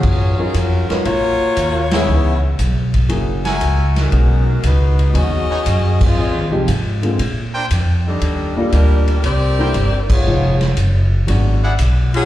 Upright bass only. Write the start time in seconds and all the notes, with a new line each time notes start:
0.04 F#2
0.40 muted upright bass stroke
0.54 F2
0.91 muted upright bass stroke
1.06 A#1
1.41 muted upright bass stroke
1.57 D#2
2.08 C#2
2.59 B1
3.10 F#1
3.61 C#2
4.12 B1
4.64 C#2
5.15 D#2
5.50 muted upright bass stroke
5.66 F#2
6.17 F2
6.34 D#2
6.51 C2
6.68 G#2
7.19 A#2
7.71 F2
8.21 D#2
8.56 muted upright bass stroke
8.72 D2
9.23 C2
9.74 G1
10.26 F1
10.77 F#1
11.28 G#1
11.79 B1